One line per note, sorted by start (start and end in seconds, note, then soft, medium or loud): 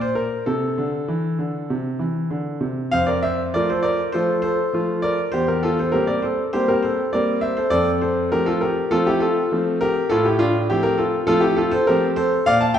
0.00 0.30 A#2 medium
0.00 0.17 C5 medium
0.15 0.44 A#4 medium
0.46 0.77 C3 medium
0.46 1.76 A4 medium
0.78 1.07 D3 medium
1.08 1.38 E3 medium
1.39 1.69 D3 medium
1.70 2.00 C3 medium
1.99 2.30 E3 medium
2.31 2.60 D3 medium
2.61 2.91 C3 medium
2.91 3.52 F2 medium
2.91 3.07 C5 medium
2.91 3.08 F5 loud
3.07 3.22 A#4 medium
3.07 3.23 D5 medium
3.23 3.52 C5 medium
3.23 3.41 E5 loud
3.54 3.98 F3 medium
3.54 3.98 A3 medium
3.54 3.98 F4 medium
3.54 3.69 A#4 medium
3.54 3.69 D5 medium
3.70 3.84 A4 medium
3.70 3.84 C5 medium
3.83 4.12 A#4 medium
3.83 4.01 D5 medium
4.12 4.57 F3 medium
4.12 4.57 A3 medium
4.12 4.57 F4 medium
4.12 4.42 A4 medium
4.12 4.40 C5 loud
4.42 4.99 A4 medium
4.42 4.99 C5 medium
4.73 5.17 F3 medium
4.73 5.17 A3 medium
4.73 5.17 F4 medium
5.02 5.32 A#4 medium
5.02 5.21 D5 medium
5.32 5.92 E2 medium
5.32 5.48 G4 medium
5.32 5.48 C5 loud
5.48 5.63 G4 medium
5.48 5.64 A#4 medium
5.63 5.78 F4 medium
5.63 5.78 A4 medium
5.79 5.94 A4 medium
5.79 5.94 C5 medium
5.92 6.37 G3 medium
5.92 6.37 A#3 medium
5.92 6.37 C4 medium
5.92 6.08 G4 medium
5.92 6.07 A#4 medium
6.07 6.23 A#4 medium
6.07 6.23 D5 medium
6.22 6.52 A4 medium
6.22 6.41 C5 medium
6.53 6.97 G3 medium
6.53 6.97 A#3 medium
6.53 6.97 C4 medium
6.53 6.67 G4 medium
6.53 6.68 C5 loud
6.68 6.83 G4 medium
6.68 6.83 A#4 medium
6.82 7.12 A4 medium
6.82 7.13 C5 medium
7.13 7.57 G3 medium
7.13 7.57 A#3 medium
7.13 7.57 C4 medium
7.13 7.42 A#4 medium
7.13 7.40 D5 medium
7.41 7.55 C5 medium
7.41 7.57 E5 medium
7.57 7.70 A4 medium
7.57 7.73 C5 medium
7.70 8.30 F2 medium
7.70 8.00 A4 medium
7.70 7.89 D5 loud
8.01 8.30 A4 medium
8.01 8.29 C5 medium
8.32 8.75 F3 medium
8.32 8.76 A3 medium
8.32 8.76 C4 medium
8.32 8.46 G4 medium
8.32 8.47 A#4 loud
8.46 8.62 F4 medium
8.46 8.62 A4 medium
8.61 8.90 G4 medium
8.61 8.92 A#4 medium
8.91 9.35 F3 medium
8.91 9.35 A3 medium
8.91 9.35 C4 medium
8.91 9.06 F4 medium
8.91 9.07 A4 loud
9.07 9.22 E4 medium
9.07 9.22 G4 medium
9.20 9.77 F4 medium
9.20 9.81 A4 medium
9.52 9.95 F3 medium
9.52 9.95 A3 medium
9.52 9.95 C4 medium
9.81 10.09 G4 medium
9.81 10.08 A#4 loud
10.10 10.69 A2 medium
10.10 10.25 F4 medium
10.10 10.25 A4 loud
10.25 10.40 E4 medium
10.25 10.40 G4 medium
10.39 10.68 D4 medium
10.39 10.57 F4 loud
10.70 11.13 F3 medium
10.70 11.13 A3 medium
10.70 11.13 C4 medium
10.70 10.84 E4 medium
10.70 10.82 G4 loud
10.83 10.98 G4 medium
10.83 10.99 A#4 loud
10.98 11.26 F4 medium
10.98 11.16 A4 medium
11.27 11.71 F3 medium
11.27 11.71 A3 medium
11.27 11.71 C4 medium
11.27 11.42 F4 medium
11.27 11.43 A4 loud
11.41 11.57 E4 medium
11.41 11.57 G4 loud
11.56 11.72 F4 medium
11.56 11.71 A4 medium
11.71 11.87 A4 medium
11.71 11.87 C5 loud
11.87 12.31 F3 medium
11.87 12.31 A3 medium
11.87 12.32 C4 medium
11.87 12.16 G4 medium
11.87 12.05 A#4 loud
12.16 12.45 A4 medium
12.16 12.44 C5 loud
12.46 12.79 A#2 medium
12.46 12.61 D5 medium
12.46 12.61 F5 loud
12.61 12.76 F5 medium
12.61 12.76 A5 loud
12.74 12.79 E5 medium
12.74 12.79 G5 loud